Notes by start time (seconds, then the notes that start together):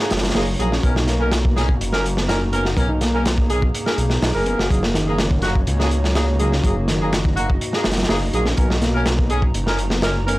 Already playing: A#3 D#4 F#4 C#5
0.00 A#3 D#4 G#4
0.10 F#1, snare, closed hi-hat
0.17 snare, closed hi-hat
0.23 F#3, snare, closed hi-hat
0.29 snare, closed hi-hat
0.34 F#1 A#3 D#4 G#4, snare, open hi-hat
0.59 A#1 F#3 A#3 D#4 G#4, closed hi-hat
0.72 C#4, snare
0.83 B1 A#3 B3 C#4 D#4 A#4 A#5, kick, closed hi-hat
0.96 D#4, snare
1.07 A#3, snare, closed hi-hat
1.20 C#4 D#4 A#4
1.32 snare, closed hi-hat
1.45 kick
1.56 C#4 D#4 G#4, snare, closed hi-hat
1.69 kick
1.80 F#1, closed hi-hat
1.93 C#4 D#4 A#4, snare
2.06 closed hi-hat
2.17 B3, snare
2.29 C#4 D#4 A#4, snare, closed hi-hat
2.53 B3 C#4 D#4 A#4, closed hi-hat
2.65 F#4, snare
2.77 B1 B3 C#4 D#4 G#4 A#4, kick, closed hi-hat
2.89 D#4
3.01 A#3, snare, closed hi-hat
3.13 C#4 D#4 A#4
3.25 snare, closed hi-hat
3.38 kick
3.49 C#4 D#4 G#4, closed hi-hat
3.62 kick
3.75 closed hi-hat
3.86 C#4 D#4 A#4, snare
3.98 B1, closed hi-hat
4.10 B3, snare
4.22 B1 D#4, snare, open hi-hat
4.34 F#1 C#4 D#4 A#4
4.46 B3, closed hi-hat
4.59 F#1 F#4, snare
4.70 F#1 F#3 A#3 D#4 F#4 G#4 C#5, kick, closed hi-hat
4.83 A#3, snare
4.94 D#3, snare, closed hi-hat
5.07 A#3 D#4 G#4
5.18 snare, closed hi-hat
5.31 kick
5.42 A#3 D#4 F#4, snare, closed hi-hat
5.55 kick
5.67 C#2, closed hi-hat
5.80 A#3 D#4 G#4, snare
5.91 closed hi-hat
6.04 F#3, snare
6.15 A#3 D#4 G#4, snare, closed hi-hat
6.39 F#3 A#3 D#4 G#4, closed hi-hat
6.52 C#4, snare
6.64 F#1 F#3 A#3 D#4 G#4 D#5, kick, closed hi-hat
6.76 A#3
6.87 D#3, snare, closed hi-hat
7.01 A#3 D#4 G#4
7.13 snare, closed hi-hat
7.25 kick
7.36 A#3 D#4 F#4, closed hi-hat
7.50 kick
7.61 closed hi-hat
7.73 A#3 D#4 G#4, snare
7.84 F#1, snare, closed hi-hat
7.92 snare, closed hi-hat
7.97 F#3, snare, closed hi-hat
8.03 snare, closed hi-hat
8.09 F#1 A#3 D#4 G#4, snare, open hi-hat
8.33 A#1 F#3 A#3 D#4 G#4, closed hi-hat
8.46 C#4, snare
8.57 B1 B3 C#4 D#4 A#4 A#5, kick, closed hi-hat
8.70 D#4, snare
8.82 A#3, snare, closed hi-hat
8.94 C#4 D#4 A#4
9.06 snare, closed hi-hat
9.19 kick
9.30 C#4 D#4 G#4, closed hi-hat
9.42 kick
9.54 F#1, closed hi-hat
9.67 C#4 D#4 A#4, snare
9.79 closed hi-hat
9.90 B3, snare
10.02 C#4 D#4 A#4, snare, closed hi-hat
10.27 B3 C#4 D#4 A#4, closed hi-hat